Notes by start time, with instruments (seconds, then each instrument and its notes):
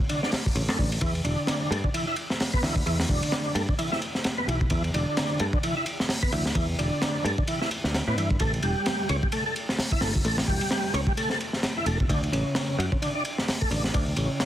0.09 tonewheel organ D3, ride
0.23 tonewheel organ D4, snare
0.32 snare, open hi-hat
0.46 muted picked electric bass stroke, kick
0.55 picked electric bass A1, tonewheel organ C#3, ride
0.68 picked electric bass F#2, tonewheel organ A3, snare, open hi-hat
0.79 picked electric bass A1, tonewheel organ D3, kick
0.92 ride
1.01 picked electric bass E2, tonewheel organ E3, kick, ride
1.15 ride
1.24 picked electric bass E1, tonewheel organ D3, ride
1.47 snare, ride
1.71 picked electric bass G2, tonewheel organ A3, ride
1.84 tonewheel organ D3, kick
1.94 tonewheel organ E3, ride
2.07 tonewheel organ E4
2.16 ride
2.30 snare
2.40 snare, open hi-hat
2.53 tonewheel organ B3, kick
2.63 picked electric bass D2, tonewheel organ E3, snare, open hi-hat
2.76 kick
2.86 picked electric bass E2, tonewheel organ E3, ride
3.00 snare, open hi-hat
3.09 picked electric bass E1, tonewheel organ D3, kick
3.23 ride
3.32 snare, ride
3.55 picked electric bass G2, tonewheel organ A3, ride
3.69 tonewheel organ D3, kick
3.79 tonewheel organ E3, ride
3.92 tonewheel organ E4, snare
4.02 ride
4.15 snare
4.24 snare, ride
4.38 tonewheel organ B3
4.48 picked electric bass B1, tonewheel organ E3, ride
4.61 kick
4.70 picked electric bass E2, tonewheel organ E3, kick, ride
4.84 ride
4.94 picked electric bass E1, tonewheel organ D3, ride
5.17 snare, ride
5.39 picked electric bass G2, tonewheel organ A3, ride
5.53 tonewheel organ D3, kick
5.63 tonewheel organ E3, ride
5.77 tonewheel organ E4
5.86 ride
6.00 snare
6.09 snare, open hi-hat
6.23 tonewheel organ B3, kick
6.32 picked electric bass D2, tonewheel organ E3, ride
6.46 snare
6.55 picked electric bass E2, tonewheel organ E3, kick, ride
6.79 picked electric bass E1, tonewheel organ D3, ride
7.02 snare, ride
7.25 picked electric bass G2, tonewheel organ A3, ride
7.38 tonewheel organ D3, kick
7.47 tonewheel organ E3, ride
7.61 tonewheel organ E4, snare
7.71 ride
7.84 picked electric bass D2, snare
7.94 snare, ride
8.07 picked electric bass A2, tonewheel organ B3
8.17 picked electric bass G2, tonewheel organ E3, ride
8.31 kick
8.39 picked electric bass A1, tonewheel organ A3, kick, ride
8.54 ride
8.63 picked electric bass E1, tonewheel organ G3, ride
8.86 snare, ride
9.09 picked electric bass C#2, tonewheel organ C#4, ride
9.23 tonewheel organ G3, kick
9.32 tonewheel organ A3, ride
9.46 tonewheel organ A4
9.56 ride
9.69 snare
9.79 snare, open hi-hat
9.92 tonewheel organ E4, kick
10.01 picked electric bass G1, tonewheel organ A3, snare, open hi-hat
10.16 kick
10.24 picked electric bass A1, tonewheel organ A3, ride
10.38 snare, open hi-hat
10.48 picked electric bass E1, tonewheel organ G3, kick
10.61 ride
10.71 snare, ride
10.94 picked electric bass C#2, tonewheel organ C#4, ride
11.07 tonewheel organ G3, kick
11.17 tonewheel organ A3, ride
11.30 tonewheel organ A4, snare
11.40 ride
11.53 snare
11.63 snare, ride
11.77 tonewheel organ E4
11.86 picked electric bass E1, tonewheel organ A3, ride
12.00 kick
12.09 picked electric bass D2, tonewheel organ D3, kick, ride
12.23 ride
12.32 picked electric bass A1, tonewheel organ C#3, ride
12.55 snare, ride
12.79 picked electric bass F#2, tonewheel organ F#3, ride
12.92 tonewheel organ C#3, kick
13.02 tonewheel organ D3, ride
13.15 tonewheel organ D4
13.25 ride
13.38 snare
13.48 snare, open hi-hat
13.61 tonewheel organ A3, kick
13.71 picked electric bass A1, tonewheel organ D3, ride
13.84 snare
13.94 picked electric bass D2, tonewheel organ D3, kick, ride
14.16 picked electric bass A1, tonewheel organ C#3, ride
14.40 snare, ride